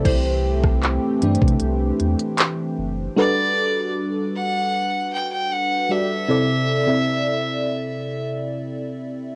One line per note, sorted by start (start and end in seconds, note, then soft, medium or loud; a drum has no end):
0.05 0.98 C2 loud
0.05 3.14 E3 medium
0.05 3.14 A3 medium
0.05 3.14 C4 medium
0.05 3.14 G4 medium
0.05 1.83 C5 medium
0.05 kick loud
0.05 closed hi-hat medium
0.05 crash loud
0.64 kick loud
0.64 cross-stick medium
0.83 clap loud
0.83 closed hi-hat medium
1.22 1.37 G2 medium
1.22 3.13 E3 medium
1.22 3.13 A3 medium
1.22 3.13 D4 medium
1.22 closed hi-hat medium
1.35 closed hi-hat medium
1.42 1.57 C3 loud
1.42 kick medium
1.48 closed hi-hat medium
1.60 1.92 C2 medium
1.60 closed hi-hat medium
2.00 2.15 E2 medium
2.00 closed hi-hat medium
2.19 closed hi-hat medium
2.38 clap loud
2.38 closed hi-hat medium
2.78 3.08 F#1 loud
3.17 4.34 G3 loud
3.17 4.34 D4 loud
3.17 4.34 F#4 medium
3.17 4.35 A4 medium
3.17 4.35 B4 loud
3.17 3.91 D5 loud
4.35 5.08 F#5 loud
5.13 5.31 G5 loud
5.32 5.53 G5 loud
5.52 5.93 F#5 loud
5.89 6.19 G3 medium
5.89 6.19 D4 medium
5.89 6.19 F#4 medium
5.89 6.19 A4 medium
5.89 6.20 D5 medium
5.89 8.24 E5 loud
6.28 6.72 C3 loud
6.28 6.72 C4 loud
6.28 6.73 E4 loud
6.28 6.73 A4 medium
6.28 6.73 D5 loud
6.87 8.04 C3 loud
6.87 8.04 C4 medium
6.87 8.05 E4 medium
6.87 8.05 A4 medium
6.87 8.05 E5 loud